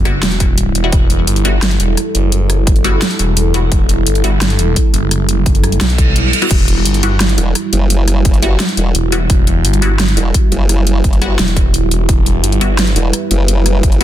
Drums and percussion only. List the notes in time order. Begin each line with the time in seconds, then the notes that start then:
0.05 cross-stick, closed hi-hat
0.23 snare, closed hi-hat
0.31 closed hi-hat
0.40 kick, closed hi-hat
0.58 closed hi-hat
0.75 closed hi-hat
0.93 kick, closed hi-hat
1.10 closed hi-hat
1.27 closed hi-hat
1.36 closed hi-hat
1.45 closed hi-hat
1.62 snare, closed hi-hat
1.71 closed hi-hat
1.80 closed hi-hat
1.97 cross-stick, closed hi-hat
2.15 closed hi-hat
2.32 closed hi-hat
2.50 cross-stick, closed hi-hat
2.67 kick, closed hi-hat
2.76 closed hi-hat
2.85 closed hi-hat
3.02 snare, closed hi-hat
3.11 closed hi-hat
3.19 closed hi-hat
3.37 closed hi-hat
3.54 closed hi-hat
3.72 kick, closed hi-hat
3.89 closed hi-hat
4.07 closed hi-hat
4.15 closed hi-hat
4.24 closed hi-hat
4.41 snare, closed hi-hat
4.50 closed hi-hat
4.59 closed hi-hat
4.76 kick, closed hi-hat
4.94 closed hi-hat
5.11 cross-stick, closed hi-hat
5.29 closed hi-hat
5.46 kick, closed hi-hat
5.55 closed hi-hat
5.64 cross-stick, closed hi-hat
5.72 closed hi-hat
5.81 snare, closed hi-hat
5.90 closed hi-hat
5.98 kick, closed hi-hat
6.16 closed hi-hat
6.33 closed hi-hat
6.42 closed hi-hat
6.51 kick, closed hi-hat, crash
6.68 closed hi-hat
6.85 closed hi-hat
6.94 closed hi-hat
7.03 closed hi-hat
7.20 snare, closed hi-hat
7.29 closed hi-hat
7.38 closed hi-hat
7.55 cross-stick, closed hi-hat
7.73 closed hi-hat
7.90 closed hi-hat
8.08 cross-stick, closed hi-hat
8.25 kick, closed hi-hat
8.34 closed hi-hat
8.42 closed hi-hat
8.60 snare, closed hi-hat
8.69 closed hi-hat
8.77 closed hi-hat
8.95 closed hi-hat
9.12 closed hi-hat
9.30 kick, closed hi-hat
9.47 closed hi-hat
9.65 closed hi-hat
9.73 closed hi-hat
9.82 closed hi-hat
10.00 snare, closed hi-hat
10.08 closed hi-hat
10.17 closed hi-hat
10.34 kick, closed hi-hat
10.52 closed hi-hat
10.69 cross-stick, closed hi-hat
10.87 closed hi-hat
11.04 kick, closed hi-hat
11.13 closed hi-hat
11.22 cross-stick, closed hi-hat
11.39 snare, closed hi-hat
11.48 closed hi-hat
11.56 kick, closed hi-hat
11.74 closed hi-hat
11.91 closed hi-hat
12.09 kick, closed hi-hat
12.26 closed hi-hat
12.44 closed hi-hat
12.52 closed hi-hat
12.61 closed hi-hat
12.79 snare, closed hi-hat
12.87 closed hi-hat
12.96 closed hi-hat
13.13 cross-stick, closed hi-hat
13.31 closed hi-hat
13.48 closed hi-hat
13.66 cross-stick, closed hi-hat
13.83 kick, closed hi-hat
13.92 closed hi-hat